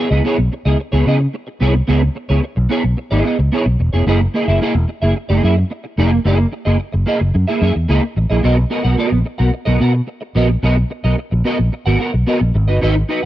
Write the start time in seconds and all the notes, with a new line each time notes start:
0.10 C#2 B3 E4 G#4 D#5
0.24 B3 E4 G#4 C#5
0.38 B1, muted clean electric guitar stroke
0.52 muted clean electric guitar stroke
0.65 C#2 B3 E4 G#4 D#5
0.79 muted clean electric guitar stroke
0.92 C#2 B3 E4 G#4 C#5
1.06 C#3 B3 E4 G#4 D#5
1.20 muted clean electric guitar stroke
1.34 muted clean electric guitar stroke
1.47 muted clean electric guitar stroke
1.60 C2 B3 E4 G#4 C#5
1.74 muted clean electric guitar stroke
1.87 C#2 B3 E4 G#4 C#5
2.02 muted clean electric guitar stroke
2.15 muted clean electric guitar stroke
2.29 C#2 B3 E4 G#4 C#5
2.43 muted clean electric guitar stroke
2.56 B1, muted clean electric guitar stroke
2.69 B3 E4 G#4 C#5
2.84 B1, muted clean electric guitar stroke
2.97 muted clean electric guitar stroke
3.11 G#1 B3 E4 G#4 D#5
3.25 B3 E4 G#4 D#5
3.39 C#2, muted clean electric guitar stroke
3.52 B3 E4 G#4 C#5
3.66 B1, muted clean electric guitar stroke
3.79 E1, muted clean electric guitar stroke
3.93 F1 B3 E4 G#4 C#5
4.06 F#1 A#3 E4 G#4 D#5
4.20 muted clean electric guitar stroke
4.34 A#3 E4 G#4 D#5
4.48 F#1 A#3 E4 G#4 E5
4.61 A#3 E4 G#4 D#5
4.75 E1, muted clean electric guitar stroke
4.88 muted clean electric guitar stroke
5.02 F#1 A#3 E4 G#4 E5
5.16 muted clean electric guitar stroke
5.29 F#1 A#3 E4 G#4 D#5
5.43 F#2 A#3 E4 G#4 E5
5.57 muted clean electric guitar stroke
5.70 muted clean electric guitar stroke
5.84 muted clean electric guitar stroke
5.98 F1 A#3 E4 G#4 D#5
6.12 muted clean electric guitar stroke
6.25 F#1 A#3 E4 G#4 D#5
6.39 muted clean electric guitar stroke
6.52 muted clean electric guitar stroke
6.65 F#1 A#3 E4 G#4 D#5
6.79 muted clean electric guitar stroke
6.93 F#1, muted clean electric guitar stroke
7.06 A#3 E4 G#4 D#5
7.20 F#1, muted clean electric guitar stroke
7.34 F#2, muted clean electric guitar stroke
7.48 A#3 E4 G#4 E5
7.61 F#2 A#3 E4 G#4 E5
7.75 E2, muted clean electric guitar stroke
7.88 C#2 A#3 E4 G#4 D#5
8.02 muted clean electric guitar stroke
8.16 A1, muted clean electric guitar stroke
8.30 A#1 A#3 E4 G#4 D#5
8.43 B1 B3 F#4 A#4 D#5
8.57 muted clean electric guitar stroke
8.70 B3 F#4 A#4 D#5
8.84 B1 B3 F#4 A#4 F#5
8.97 B3 F#4 A#4 D#5
9.11 A#1, muted clean electric guitar stroke
9.25 muted clean electric guitar stroke
9.38 B1 B3 F#4 A#4 F#5
9.52 muted clean electric guitar stroke
9.65 B1 B3 F#4 A#4 D#5
9.80 B2 B3 F#4 A#4 F#5
9.94 muted clean electric guitar stroke
10.07 muted clean electric guitar stroke
10.21 muted clean electric guitar stroke
10.35 A#1 B3 F#4 A#4 D#5
10.49 muted clean electric guitar stroke
10.63 B1 B3 F#4 A#4 D#5
10.76 muted clean electric guitar stroke
10.90 muted clean electric guitar stroke
11.04 B1 B3 F#4 A#4 D#5
11.18 muted clean electric guitar stroke
11.31 A#1, muted clean electric guitar stroke
11.45 B3 F#4 A#4 D#5
11.59 A#1, muted clean electric guitar stroke
11.72 muted clean electric guitar stroke
11.86 G#1 B3 F#4 A#4 F#5
11.99 B3 F#4 A#4 F#5
12.13 B1, muted clean electric guitar stroke
12.27 B3 F#4 A#4 D#5
12.40 A#1, muted clean electric guitar stroke
12.54 G#1, muted clean electric guitar stroke
12.68 G1 D#4 F#4 B4 D#5
12.81 G#1 D#4 F#4 B4 D#5
12.95 muted clean electric guitar stroke
13.09 D#4 F#4 B4 D#5